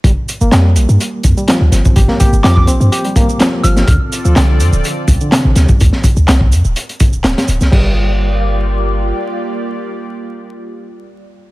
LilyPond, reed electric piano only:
\new Staff \with { instrumentName = "Reed electric piano" } { \clef bass \time 4/4 \key g \minor \tempo 4 = 125 g16 r8 bes16 g4 r8. g16 f16 r16 c'8 | g'16 bes16 g'16 r16 f16 r16 c'16 r16 g'16 g16 bes8 f16 r16 f16 r16 | d16 r8 f16 d4 r8. d16 c16 r16 g8 | r1 |
g8 r2. r8 | r1 | }